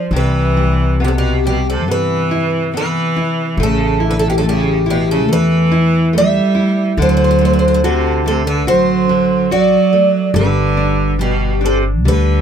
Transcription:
Already playing: twelve-string acoustic guitar C5
0.11 upright bass C2, nylon-string guitar C3, cello E3
0.16 twelve-string acoustic guitar B4
0.57 nylon-string guitar G3
1.00 cello B2, nylon-string guitar B3
1.04 cello C3, twelve-string acoustic guitar G4 A4
1.15 cello B2, twelve-string acoustic guitar G4
1.46 cello B2, nylon-string guitar G3, twelve-string acoustic guitar G4
1.69 cello C3, twelve-string acoustic guitar A4
1.85 upright bass G2, nylon-string guitar B3
1.90 cello E3, twelve-string acoustic guitar B4
2.31 nylon-string guitar E4
2.74 cello E3, nylon-string guitar B3, twelve-string acoustic guitar B4
3.16 nylon-string guitar E4
3.57 upright bass A1, nylon-string guitar A3
3.61 cello C#3, twelve-string acoustic guitar A4
4.00 nylon-string guitar E4
4.08 cello D3, twelve-string acoustic guitar B4
4.17 cello C#3, twelve-string acoustic guitar A4
4.26 cello B2, twelve-string acoustic guitar G4
4.36 cello C#3, twelve-string acoustic guitar A4
4.43 cello C#3, nylon-string guitar A3
4.49 twelve-string acoustic guitar G4
4.86 cello B2, nylon-string guitar E4
4.90 twelve-string acoustic guitar G4
5.10 cello C#3, twelve-string acoustic guitar A4
5.28 upright bass E2, nylon-string guitar A3
5.32 cello E3, twelve-string acoustic guitar B4
5.72 nylon-string guitar E4
6.13 cello G3, nylon-string guitar A3
6.18 twelve-string acoustic guitar E5
6.55 nylon-string guitar E4
6.97 upright bass D2, nylon-string guitar D3, cello F#3
7.02 twelve-string acoustic guitar C5
7.09 twelve-string acoustic guitar C5
7.17 twelve-string acoustic guitar C5
7.24 twelve-string acoustic guitar C5
7.31 twelve-string acoustic guitar C5
7.39 nylon-string guitar A3, twelve-string acoustic guitar C5
7.45 twelve-string acoustic guitar C5
7.53 twelve-string acoustic guitar C5
7.59 twelve-string acoustic guitar C5
7.68 twelve-string acoustic guitar C5
7.74 twelve-string acoustic guitar C5
7.84 cello C3, nylon-string guitar F#4, twelve-string acoustic guitar A4
8.26 cello C3, nylon-string guitar A3, twelve-string acoustic guitar A4
8.47 cello D3, twelve-string acoustic guitar B4
8.66 upright bass A1, cello F#3, nylon-string guitar F#4, twelve-string acoustic guitar C5
9.09 nylon-string guitar D3
9.51 cello F#3, nylon-string guitar F#4, twelve-string acoustic guitar D5
9.93 nylon-string guitar A3
10.34 upright bass G1, cello D3, nylon-string guitar G3, twelve-string acoustic guitar B4
10.77 nylon-string guitar D4
11.19 cello B2, nylon-string guitar G3, twelve-string acoustic guitar G4
11.61 cello C3, nylon-string guitar D4
11.66 twelve-string acoustic guitar A4
12.05 upright bass D2, cello D3, nylon-string guitar G3, twelve-string acoustic guitar B4

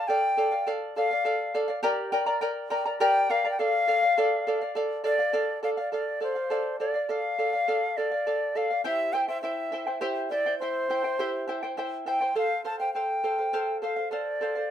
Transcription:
0.08 charango A4 D5 F5, quena G5
0.37 charango A4 D5 F5
0.52 charango D5 F5
0.67 charango A4 D5 F5
0.96 charango A4 D5 F5, quena F5
1.11 charango D5 F5
1.25 charango A4 D5 F5
1.54 charango A4 D5 F5
1.68 charango D5 F5
1.83 charango G4 A#4 D5 G5 A#5
2.12 charango A#4 D5 G5 A#5
2.26 charango A#4 D5 A#5
2.41 charango A#4 D5 G5 A#5
2.70 charango A#4 D5 G5 A#5
2.86 charango A#4 D5 A#5
3.00 charango G4 A#4 D5 G5 A#5, quena G5
3.29 charango A#4 D5 G5 A#5, quena F5
3.45 charango A#4 D5 A#5
3.51 quena G5
3.59 charango A4 D5 F5, quena F5
3.87 charango A4 D5 F5
4.03 charango D5 F5
4.18 charango A4 D5 F5
4.47 charango A4 D5 F5
4.61 charango D5 F5
4.75 charango A4 D5 F5
5.04 charango A4 D5 F5, quena D5
5.19 charango D5 F5
5.33 charango A4 D5 F5
5.63 charango A4 D5 F5, quena F5
5.77 charango D5 F5, quena D5
5.92 charango A4 D5 F5, quena D5
6.20 charango A4 D5 F5, quena C5
6.35 charango D5 F5
6.50 charango A4 D5 F5
6.79 charango A4 D5 F5, quena D5
6.94 charango D5 F5
7.09 charango A4 D5 F5, quena F5
7.38 charango A4 D5 F5
7.53 charango D5 F5
7.68 charango A4 D5 F5
7.97 charango A4 D5 F5, quena D5
8.11 charango D5 F5
8.27 charango A4 D5 F5
8.55 charango A4 D5 F5, quena F5
8.70 charango D5 F5
8.84 charango E4 G4 C5 E5 G5, quena E5
9.13 charango E4 C5 E5 G5, quena G5
9.28 charango E4 C5 G5, quena E5
9.42 charango E4 C5 E5 G5, quena E5
9.72 charango E4 C5 E5 G5
9.87 charango E4 C5 G5
10.01 charango E4 G4 C5 E5 G5
10.30 charango E4 C5 E5 G5, quena D5
10.46 charango E4 C5 G5
10.60 charango E4 C5 E5 G5, quena C5
10.90 charango E4 C5 E5 G5
11.04 charango E4 C5 G5
11.19 charango E4 G4 C5 E5 G5
11.48 charango E4 C5 E5 G5
11.63 charango E4 C5 G5
11.77 charango E4 C5 E5 G5
12.06 charango E4 C5 E5 G5, quena G5
12.21 charango E4 C5 G5
12.35 charango A4 C5 F5, quena F5
12.64 charango A4 C5 F5, quena A5
12.79 charango C5 F5, quena G5
12.94 charango A4 C5 F5, quena G5
13.24 charango A4 C5 F5
13.38 charango C5 F5
13.53 charango A4 C5 F5
13.82 charango A4 C5 F5, quena F5
13.96 charango C5 F5
14.11 charango A4 C5 F5, quena D5
14.41 charango A4 C5 F5
14.55 charango C5 F5

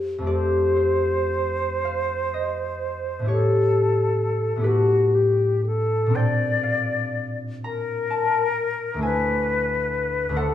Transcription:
Already playing: harp F2 D4 G4 A4 C5
0.18 harp F2 A3 F4
0.24 harp G4 A4 D5
0.29 flute C5
0.77 harp C5
1.85 harp F5
2.34 harp D#5
3.19 harp A2 B3
3.24 harp E4 G4 A4 C#5
3.31 flute A4
4.56 harp A2 B3 E4
4.61 harp G4 A4 B4
4.67 flute F#4
5.15 flute G4
5.66 flute A4
6.06 harp A#2 C4 D4
6.13 harp F4 C5 G5, flute D5
6.63 harp F5
7.64 flute A#4, harp A#5
8.10 harp A5
8.94 harp D2 A3
8.98 harp D4 E4
9.02 flute B4, harp C5 G#5
10.29 harp D2 A3 D4
10.35 harp E4 C5 F#5, flute A4

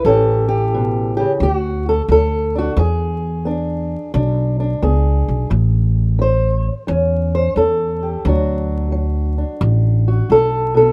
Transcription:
0.05 upright bass A1, steel-string acoustic guitar A2 E3 C#4 G4 A4
0.48 steel-string acoustic guitar G4
0.74 steel-string acoustic guitar B2
1.17 steel-string acoustic guitar C#3 G4
1.40 upright bass D2, steel-string acoustic guitar D3 F#4
1.89 steel-string acoustic guitar A4
2.08 upright bass D2, steel-string acoustic guitar F#3 A4
2.56 steel-string acoustic guitar D4 F#4
2.77 upright bass E2, steel-string acoustic guitar E3 G#4
3.45 steel-string acoustic guitar B3 D4
4.14 upright bass B1, steel-string acoustic guitar B2 D4
4.60 steel-string acoustic guitar D4
4.83 upright bass C#2, steel-string acoustic guitar B3 G#4
5.28 upright bass B1
5.50 upright bass A1, steel-string acoustic guitar A2
6.19 steel-string acoustic guitar E3 C5
6.87 upright bass E2, steel-string acoustic guitar E3 C#4
7.35 steel-string acoustic guitar C5
7.56 upright bass E2, steel-string acoustic guitar E3 A4
8.03 steel-string acoustic guitar G4
8.25 upright bass D2, steel-string acoustic guitar D3 F#3 D4 F#4
8.92 steel-string acoustic guitar F#3
9.38 steel-string acoustic guitar D4
9.61 upright bass A1, steel-string acoustic guitar A2
10.08 steel-string acoustic guitar F#4
10.30 upright bass B1, steel-string acoustic guitar A4
10.74 steel-string acoustic guitar B2 A4

